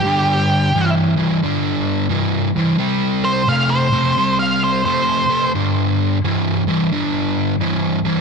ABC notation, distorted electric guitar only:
X:1
M:4/4
L:1/8
Q:"Swing" 1/4=88
K:Cdor
V:1 name="Distorted electric guitar" clef=bass
[G,,D,]2 [G,,=E,] [G,,E,] [G,,D,]2 [G,,E,] [G,,E,] | [C,G,]2 [C,A,] [C,A,] [C,G,]2 [C,A,] [C,A,] | [G,,D,]2 [G,,=E,] [G,,E,] [G,,D,]2 [G,,E,] [G,,E,] |]